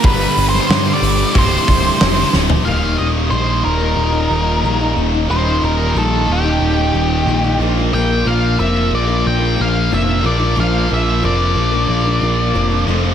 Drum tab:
HH |o-o-o-o-o-o-o---|----------------|----------------|----------------|
SD |---oo-------o-o-|----------------|----------------|----------------|
FT |---------------o|----------------|----------------|----------------|
BD |o-------o-o-----|----------------|----------------|----------------|

HH |----------------|
SD |----------------|
FT |----------------|
BD |----------------|